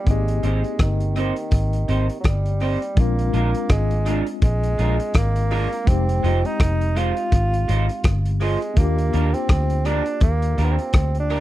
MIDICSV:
0, 0, Header, 1, 6, 480
1, 0, Start_track
1, 0, Tempo, 724638
1, 47, Time_signature, 4, 2, 24, 8
1, 7552, End_track
2, 0, Start_track
2, 0, Title_t, "Clean electric guitar"
2, 0, Program_c, 0, 27
2, 286, Note_on_c, 0, 60, 77
2, 289, Note_on_c, 0, 63, 80
2, 293, Note_on_c, 0, 67, 78
2, 295, Note_on_c, 0, 72, 77
2, 389, Note_off_c, 0, 60, 0
2, 391, Note_off_c, 0, 63, 0
2, 393, Note_off_c, 0, 67, 0
2, 394, Note_off_c, 0, 72, 0
2, 767, Note_on_c, 0, 60, 83
2, 772, Note_on_c, 0, 63, 82
2, 775, Note_on_c, 0, 67, 91
2, 778, Note_on_c, 0, 72, 89
2, 871, Note_off_c, 0, 60, 0
2, 873, Note_off_c, 0, 63, 0
2, 874, Note_off_c, 0, 67, 0
2, 876, Note_off_c, 0, 72, 0
2, 1247, Note_on_c, 0, 60, 77
2, 1250, Note_on_c, 0, 63, 81
2, 1252, Note_on_c, 0, 67, 87
2, 1255, Note_on_c, 0, 72, 84
2, 1351, Note_off_c, 0, 60, 0
2, 1352, Note_off_c, 0, 63, 0
2, 1354, Note_off_c, 0, 67, 0
2, 1355, Note_off_c, 0, 72, 0
2, 1726, Note_on_c, 0, 60, 83
2, 1729, Note_on_c, 0, 63, 80
2, 1733, Note_on_c, 0, 67, 80
2, 1735, Note_on_c, 0, 72, 86
2, 1831, Note_off_c, 0, 60, 0
2, 1832, Note_off_c, 0, 63, 0
2, 1834, Note_off_c, 0, 67, 0
2, 1835, Note_off_c, 0, 72, 0
2, 2208, Note_on_c, 0, 56, 72
2, 2213, Note_on_c, 0, 62, 72
2, 2215, Note_on_c, 0, 65, 86
2, 2217, Note_on_c, 0, 70, 96
2, 2312, Note_off_c, 0, 56, 0
2, 2314, Note_off_c, 0, 62, 0
2, 2315, Note_off_c, 0, 65, 0
2, 2316, Note_off_c, 0, 70, 0
2, 2687, Note_on_c, 0, 56, 94
2, 2692, Note_on_c, 0, 62, 103
2, 2695, Note_on_c, 0, 65, 90
2, 2699, Note_on_c, 0, 70, 90
2, 2791, Note_off_c, 0, 56, 0
2, 2794, Note_off_c, 0, 62, 0
2, 2795, Note_off_c, 0, 65, 0
2, 2797, Note_off_c, 0, 70, 0
2, 3169, Note_on_c, 0, 56, 86
2, 3174, Note_on_c, 0, 62, 83
2, 3178, Note_on_c, 0, 65, 97
2, 3180, Note_on_c, 0, 70, 93
2, 3272, Note_off_c, 0, 56, 0
2, 3275, Note_off_c, 0, 62, 0
2, 3277, Note_off_c, 0, 65, 0
2, 3278, Note_off_c, 0, 70, 0
2, 3649, Note_on_c, 0, 56, 93
2, 3651, Note_on_c, 0, 62, 100
2, 3655, Note_on_c, 0, 65, 100
2, 3657, Note_on_c, 0, 70, 105
2, 3752, Note_off_c, 0, 56, 0
2, 3753, Note_off_c, 0, 62, 0
2, 3755, Note_off_c, 0, 65, 0
2, 3757, Note_off_c, 0, 70, 0
2, 4126, Note_on_c, 0, 56, 75
2, 4131, Note_on_c, 0, 63, 78
2, 4134, Note_on_c, 0, 65, 83
2, 4137, Note_on_c, 0, 72, 92
2, 4231, Note_off_c, 0, 56, 0
2, 4233, Note_off_c, 0, 63, 0
2, 4235, Note_off_c, 0, 65, 0
2, 4236, Note_off_c, 0, 72, 0
2, 4606, Note_on_c, 0, 56, 88
2, 4611, Note_on_c, 0, 63, 85
2, 4614, Note_on_c, 0, 65, 106
2, 4616, Note_on_c, 0, 72, 105
2, 4710, Note_off_c, 0, 56, 0
2, 4713, Note_off_c, 0, 63, 0
2, 4714, Note_off_c, 0, 65, 0
2, 4716, Note_off_c, 0, 72, 0
2, 5087, Note_on_c, 0, 56, 82
2, 5091, Note_on_c, 0, 63, 98
2, 5093, Note_on_c, 0, 65, 101
2, 5097, Note_on_c, 0, 72, 101
2, 5191, Note_off_c, 0, 56, 0
2, 5193, Note_off_c, 0, 63, 0
2, 5194, Note_off_c, 0, 65, 0
2, 5196, Note_off_c, 0, 72, 0
2, 5566, Note_on_c, 0, 56, 90
2, 5572, Note_on_c, 0, 63, 80
2, 5574, Note_on_c, 0, 65, 94
2, 5575, Note_on_c, 0, 72, 101
2, 5670, Note_off_c, 0, 56, 0
2, 5673, Note_off_c, 0, 63, 0
2, 5674, Note_off_c, 0, 65, 0
2, 5675, Note_off_c, 0, 72, 0
2, 6049, Note_on_c, 0, 58, 69
2, 6052, Note_on_c, 0, 62, 79
2, 6056, Note_on_c, 0, 67, 86
2, 6059, Note_on_c, 0, 70, 83
2, 6151, Note_off_c, 0, 58, 0
2, 6153, Note_off_c, 0, 62, 0
2, 6155, Note_off_c, 0, 67, 0
2, 6156, Note_off_c, 0, 70, 0
2, 6526, Note_on_c, 0, 58, 80
2, 6529, Note_on_c, 0, 62, 105
2, 6532, Note_on_c, 0, 67, 97
2, 6535, Note_on_c, 0, 70, 98
2, 6629, Note_off_c, 0, 58, 0
2, 6631, Note_off_c, 0, 62, 0
2, 6633, Note_off_c, 0, 67, 0
2, 6634, Note_off_c, 0, 70, 0
2, 7006, Note_on_c, 0, 58, 80
2, 7010, Note_on_c, 0, 62, 80
2, 7012, Note_on_c, 0, 67, 93
2, 7016, Note_on_c, 0, 70, 89
2, 7109, Note_off_c, 0, 58, 0
2, 7111, Note_off_c, 0, 62, 0
2, 7112, Note_off_c, 0, 67, 0
2, 7114, Note_off_c, 0, 70, 0
2, 7485, Note_on_c, 0, 58, 77
2, 7487, Note_on_c, 0, 62, 85
2, 7491, Note_on_c, 0, 67, 97
2, 7493, Note_on_c, 0, 70, 108
2, 7552, Note_off_c, 0, 58, 0
2, 7552, Note_off_c, 0, 62, 0
2, 7552, Note_off_c, 0, 67, 0
2, 7552, Note_off_c, 0, 70, 0
2, 7552, End_track
3, 0, Start_track
3, 0, Title_t, "Tine electric piano"
3, 0, Program_c, 1, 4
3, 0, Control_c, 1, 64, 127
3, 28, Note_on_c, 1, 58, 61
3, 42, Note_on_c, 1, 60, 56
3, 56, Control_c, 1, 64, 0
3, 57, Note_on_c, 1, 63, 51
3, 68, Note_on_c, 1, 67, 73
3, 169, Control_c, 1, 64, 127
3, 1934, Note_off_c, 1, 58, 0
3, 1941, Note_off_c, 1, 60, 0
3, 1948, Note_off_c, 1, 63, 0
3, 1952, Note_on_c, 1, 56, 64
3, 1954, Note_off_c, 1, 67, 0
3, 1966, Note_on_c, 1, 60, 61
3, 1979, Control_c, 1, 64, 0
3, 1979, Note_on_c, 1, 62, 58
3, 1991, Note_on_c, 1, 65, 73
3, 2078, Control_c, 1, 64, 127
3, 3855, Note_off_c, 1, 56, 0
3, 3862, Note_off_c, 1, 60, 0
3, 3868, Note_off_c, 1, 62, 0
3, 3872, Note_on_c, 1, 56, 64
3, 3874, Note_off_c, 1, 65, 0
3, 3885, Note_on_c, 1, 60, 61
3, 3898, Note_on_c, 1, 63, 59
3, 3900, Control_c, 1, 64, 0
3, 3909, Note_on_c, 1, 67, 66
3, 4024, Control_c, 1, 64, 127
3, 5773, Note_off_c, 1, 56, 0
3, 5779, Note_off_c, 1, 60, 0
3, 5786, Note_off_c, 1, 63, 0
3, 5788, Note_on_c, 1, 58, 63
3, 5792, Note_off_c, 1, 67, 0
3, 5804, Note_on_c, 1, 62, 58
3, 5816, Note_on_c, 1, 65, 56
3, 5818, Control_c, 1, 64, 0
3, 5830, Note_on_c, 1, 67, 73
3, 5936, Control_c, 1, 64, 127
3, 7552, Note_off_c, 1, 58, 0
3, 7552, Note_off_c, 1, 62, 0
3, 7552, Note_off_c, 1, 65, 0
3, 7552, Note_off_c, 1, 67, 0
3, 7552, End_track
4, 0, Start_track
4, 0, Title_t, "Bassoon"
4, 0, Program_c, 2, 70
4, 65, Note_on_c, 2, 56, 97
4, 280, Note_off_c, 2, 56, 0
4, 305, Note_on_c, 2, 56, 89
4, 520, Note_off_c, 2, 56, 0
4, 543, Note_on_c, 2, 51, 81
4, 1431, Note_off_c, 2, 51, 0
4, 1460, Note_on_c, 2, 54, 56
4, 1506, Note_on_c, 2, 55, 76
4, 1516, Note_off_c, 2, 54, 0
4, 1984, Note_on_c, 2, 58, 90
4, 1994, Note_off_c, 2, 55, 0
4, 2457, Note_off_c, 2, 58, 0
4, 2462, Note_on_c, 2, 56, 89
4, 2826, Note_off_c, 2, 56, 0
4, 2939, Note_on_c, 2, 56, 102
4, 3421, Note_on_c, 2, 58, 92
4, 3431, Note_off_c, 2, 56, 0
4, 3899, Note_on_c, 2, 60, 105
4, 3909, Note_off_c, 2, 58, 0
4, 4280, Note_on_c, 2, 63, 102
4, 4290, Note_off_c, 2, 60, 0
4, 4618, Note_on_c, 2, 65, 115
4, 4628, Note_off_c, 2, 63, 0
4, 5403, Note_off_c, 2, 65, 0
4, 5576, Note_on_c, 2, 56, 93
4, 5813, Note_on_c, 2, 58, 100
4, 5823, Note_off_c, 2, 56, 0
4, 6189, Note_on_c, 2, 60, 101
4, 6199, Note_off_c, 2, 58, 0
4, 6531, Note_on_c, 2, 62, 102
4, 6541, Note_off_c, 2, 60, 0
4, 6769, Note_off_c, 2, 62, 0
4, 6776, Note_on_c, 2, 58, 96
4, 7054, Note_on_c, 2, 59, 69
4, 7064, Note_off_c, 2, 58, 0
4, 7095, Note_on_c, 2, 60, 97
4, 7105, Note_off_c, 2, 59, 0
4, 7410, Note_off_c, 2, 60, 0
4, 7417, Note_on_c, 2, 62, 90
4, 7552, Note_off_c, 2, 62, 0
4, 7552, End_track
5, 0, Start_track
5, 0, Title_t, "Fingered electric bass"
5, 0, Program_c, 3, 33
5, 45, Note_on_c, 3, 32, 88
5, 261, Note_off_c, 3, 32, 0
5, 288, Note_on_c, 3, 32, 93
5, 411, Note_off_c, 3, 32, 0
5, 529, Note_on_c, 3, 31, 89
5, 867, Note_off_c, 3, 31, 0
5, 1007, Note_on_c, 3, 32, 90
5, 1223, Note_off_c, 3, 32, 0
5, 1250, Note_on_c, 3, 32, 80
5, 1373, Note_off_c, 3, 32, 0
5, 1490, Note_on_c, 3, 31, 87
5, 1829, Note_off_c, 3, 31, 0
5, 1967, Note_on_c, 3, 34, 110
5, 2184, Note_off_c, 3, 34, 0
5, 2210, Note_on_c, 3, 34, 96
5, 2333, Note_off_c, 3, 34, 0
5, 2450, Note_on_c, 3, 32, 95
5, 2789, Note_off_c, 3, 32, 0
5, 2930, Note_on_c, 3, 34, 89
5, 3145, Note_off_c, 3, 34, 0
5, 3172, Note_on_c, 3, 34, 77
5, 3295, Note_off_c, 3, 34, 0
5, 3412, Note_on_c, 3, 32, 86
5, 3750, Note_off_c, 3, 32, 0
5, 3891, Note_on_c, 3, 29, 113
5, 4106, Note_off_c, 3, 29, 0
5, 4132, Note_on_c, 3, 29, 93
5, 4255, Note_off_c, 3, 29, 0
5, 4373, Note_on_c, 3, 29, 93
5, 4710, Note_off_c, 3, 29, 0
5, 4851, Note_on_c, 3, 32, 79
5, 5066, Note_off_c, 3, 32, 0
5, 5095, Note_on_c, 3, 32, 81
5, 5216, Note_off_c, 3, 32, 0
5, 5330, Note_on_c, 3, 31, 88
5, 5668, Note_off_c, 3, 31, 0
5, 5809, Note_on_c, 3, 39, 102
5, 6024, Note_off_c, 3, 39, 0
5, 6054, Note_on_c, 3, 39, 98
5, 6175, Note_off_c, 3, 39, 0
5, 6288, Note_on_c, 3, 38, 93
5, 6627, Note_off_c, 3, 38, 0
5, 6767, Note_on_c, 3, 39, 85
5, 6982, Note_off_c, 3, 39, 0
5, 7009, Note_on_c, 3, 39, 93
5, 7132, Note_off_c, 3, 39, 0
5, 7247, Note_on_c, 3, 38, 91
5, 7552, Note_off_c, 3, 38, 0
5, 7552, End_track
6, 0, Start_track
6, 0, Title_t, "Drums"
6, 43, Note_on_c, 9, 42, 66
6, 44, Note_on_c, 9, 36, 90
6, 109, Note_off_c, 9, 42, 0
6, 110, Note_off_c, 9, 36, 0
6, 186, Note_on_c, 9, 42, 56
6, 252, Note_off_c, 9, 42, 0
6, 286, Note_on_c, 9, 42, 67
6, 353, Note_off_c, 9, 42, 0
6, 425, Note_on_c, 9, 42, 50
6, 492, Note_off_c, 9, 42, 0
6, 523, Note_on_c, 9, 42, 89
6, 525, Note_on_c, 9, 36, 112
6, 528, Note_on_c, 9, 37, 112
6, 589, Note_off_c, 9, 42, 0
6, 592, Note_off_c, 9, 36, 0
6, 594, Note_off_c, 9, 37, 0
6, 664, Note_on_c, 9, 42, 50
6, 731, Note_off_c, 9, 42, 0
6, 768, Note_on_c, 9, 42, 77
6, 834, Note_off_c, 9, 42, 0
6, 902, Note_on_c, 9, 42, 48
6, 968, Note_off_c, 9, 42, 0
6, 1001, Note_on_c, 9, 42, 85
6, 1006, Note_on_c, 9, 36, 104
6, 1067, Note_off_c, 9, 42, 0
6, 1072, Note_off_c, 9, 36, 0
6, 1146, Note_on_c, 9, 42, 49
6, 1212, Note_off_c, 9, 42, 0
6, 1248, Note_on_c, 9, 42, 70
6, 1314, Note_off_c, 9, 42, 0
6, 1387, Note_on_c, 9, 42, 55
6, 1454, Note_off_c, 9, 42, 0
6, 1483, Note_on_c, 9, 42, 83
6, 1487, Note_on_c, 9, 36, 99
6, 1492, Note_on_c, 9, 37, 114
6, 1549, Note_off_c, 9, 42, 0
6, 1553, Note_off_c, 9, 36, 0
6, 1559, Note_off_c, 9, 37, 0
6, 1626, Note_on_c, 9, 42, 46
6, 1692, Note_off_c, 9, 42, 0
6, 1723, Note_on_c, 9, 46, 61
6, 1789, Note_off_c, 9, 46, 0
6, 1868, Note_on_c, 9, 42, 51
6, 1934, Note_off_c, 9, 42, 0
6, 1965, Note_on_c, 9, 42, 74
6, 1967, Note_on_c, 9, 36, 115
6, 2031, Note_off_c, 9, 42, 0
6, 2033, Note_off_c, 9, 36, 0
6, 2110, Note_on_c, 9, 42, 54
6, 2176, Note_off_c, 9, 42, 0
6, 2210, Note_on_c, 9, 42, 72
6, 2276, Note_off_c, 9, 42, 0
6, 2348, Note_on_c, 9, 42, 54
6, 2414, Note_off_c, 9, 42, 0
6, 2445, Note_on_c, 9, 42, 96
6, 2449, Note_on_c, 9, 36, 105
6, 2450, Note_on_c, 9, 37, 118
6, 2512, Note_off_c, 9, 42, 0
6, 2515, Note_off_c, 9, 36, 0
6, 2517, Note_off_c, 9, 37, 0
6, 2588, Note_on_c, 9, 42, 51
6, 2654, Note_off_c, 9, 42, 0
6, 2688, Note_on_c, 9, 42, 85
6, 2755, Note_off_c, 9, 42, 0
6, 2825, Note_on_c, 9, 42, 53
6, 2891, Note_off_c, 9, 42, 0
6, 2926, Note_on_c, 9, 42, 92
6, 2929, Note_on_c, 9, 36, 108
6, 2992, Note_off_c, 9, 42, 0
6, 2995, Note_off_c, 9, 36, 0
6, 3069, Note_on_c, 9, 42, 56
6, 3135, Note_off_c, 9, 42, 0
6, 3171, Note_on_c, 9, 42, 76
6, 3237, Note_off_c, 9, 42, 0
6, 3309, Note_on_c, 9, 42, 58
6, 3376, Note_off_c, 9, 42, 0
6, 3403, Note_on_c, 9, 42, 96
6, 3409, Note_on_c, 9, 36, 102
6, 3413, Note_on_c, 9, 37, 124
6, 3470, Note_off_c, 9, 42, 0
6, 3475, Note_off_c, 9, 36, 0
6, 3479, Note_off_c, 9, 37, 0
6, 3548, Note_on_c, 9, 42, 51
6, 3614, Note_off_c, 9, 42, 0
6, 3649, Note_on_c, 9, 46, 64
6, 3715, Note_off_c, 9, 46, 0
6, 3792, Note_on_c, 9, 42, 58
6, 3858, Note_off_c, 9, 42, 0
6, 3889, Note_on_c, 9, 42, 80
6, 3890, Note_on_c, 9, 36, 104
6, 3955, Note_off_c, 9, 42, 0
6, 3956, Note_off_c, 9, 36, 0
6, 4033, Note_on_c, 9, 42, 55
6, 4100, Note_off_c, 9, 42, 0
6, 4135, Note_on_c, 9, 42, 74
6, 4201, Note_off_c, 9, 42, 0
6, 4271, Note_on_c, 9, 42, 53
6, 4337, Note_off_c, 9, 42, 0
6, 4371, Note_on_c, 9, 36, 121
6, 4371, Note_on_c, 9, 42, 98
6, 4376, Note_on_c, 9, 37, 123
6, 4437, Note_off_c, 9, 36, 0
6, 4437, Note_off_c, 9, 42, 0
6, 4442, Note_off_c, 9, 37, 0
6, 4512, Note_on_c, 9, 42, 54
6, 4578, Note_off_c, 9, 42, 0
6, 4612, Note_on_c, 9, 42, 87
6, 4679, Note_off_c, 9, 42, 0
6, 4747, Note_on_c, 9, 42, 58
6, 4813, Note_off_c, 9, 42, 0
6, 4848, Note_on_c, 9, 42, 90
6, 4850, Note_on_c, 9, 36, 111
6, 4914, Note_off_c, 9, 42, 0
6, 4916, Note_off_c, 9, 36, 0
6, 4991, Note_on_c, 9, 42, 54
6, 5057, Note_off_c, 9, 42, 0
6, 5091, Note_on_c, 9, 42, 79
6, 5158, Note_off_c, 9, 42, 0
6, 5227, Note_on_c, 9, 42, 54
6, 5294, Note_off_c, 9, 42, 0
6, 5324, Note_on_c, 9, 42, 93
6, 5328, Note_on_c, 9, 36, 109
6, 5333, Note_on_c, 9, 37, 110
6, 5390, Note_off_c, 9, 42, 0
6, 5394, Note_off_c, 9, 36, 0
6, 5399, Note_off_c, 9, 37, 0
6, 5467, Note_on_c, 9, 42, 52
6, 5533, Note_off_c, 9, 42, 0
6, 5567, Note_on_c, 9, 46, 61
6, 5633, Note_off_c, 9, 46, 0
6, 5710, Note_on_c, 9, 42, 59
6, 5777, Note_off_c, 9, 42, 0
6, 5805, Note_on_c, 9, 42, 82
6, 5808, Note_on_c, 9, 36, 107
6, 5872, Note_off_c, 9, 42, 0
6, 5874, Note_off_c, 9, 36, 0
6, 5950, Note_on_c, 9, 42, 57
6, 6017, Note_off_c, 9, 42, 0
6, 6050, Note_on_c, 9, 42, 79
6, 6116, Note_off_c, 9, 42, 0
6, 6186, Note_on_c, 9, 42, 57
6, 6253, Note_off_c, 9, 42, 0
6, 6285, Note_on_c, 9, 42, 96
6, 6287, Note_on_c, 9, 36, 118
6, 6290, Note_on_c, 9, 37, 112
6, 6351, Note_off_c, 9, 42, 0
6, 6354, Note_off_c, 9, 36, 0
6, 6356, Note_off_c, 9, 37, 0
6, 6423, Note_on_c, 9, 42, 53
6, 6490, Note_off_c, 9, 42, 0
6, 6525, Note_on_c, 9, 42, 77
6, 6591, Note_off_c, 9, 42, 0
6, 6661, Note_on_c, 9, 42, 55
6, 6728, Note_off_c, 9, 42, 0
6, 6759, Note_on_c, 9, 42, 89
6, 6765, Note_on_c, 9, 36, 111
6, 6825, Note_off_c, 9, 42, 0
6, 6831, Note_off_c, 9, 36, 0
6, 6903, Note_on_c, 9, 42, 55
6, 6970, Note_off_c, 9, 42, 0
6, 7008, Note_on_c, 9, 42, 75
6, 7074, Note_off_c, 9, 42, 0
6, 7145, Note_on_c, 9, 42, 53
6, 7211, Note_off_c, 9, 42, 0
6, 7239, Note_on_c, 9, 42, 97
6, 7245, Note_on_c, 9, 36, 113
6, 7248, Note_on_c, 9, 37, 114
6, 7305, Note_off_c, 9, 42, 0
6, 7311, Note_off_c, 9, 36, 0
6, 7314, Note_off_c, 9, 37, 0
6, 7383, Note_on_c, 9, 42, 48
6, 7449, Note_off_c, 9, 42, 0
6, 7484, Note_on_c, 9, 46, 58
6, 7550, Note_off_c, 9, 46, 0
6, 7552, End_track
0, 0, End_of_file